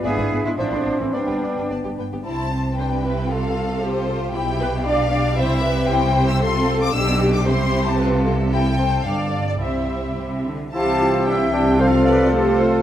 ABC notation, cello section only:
X:1
M:2/4
L:1/16
Q:1/4=114
K:C
V:1 name="Cello section" clef=bass
^G3 E D3 C | D4 z4 | C,8- | C,8 |
B,,8 | C,8- | C,4 B,,4 | C,8- |
C,4 G,,4 | C,4 C,2 D,2 | C,8- | C,8 |]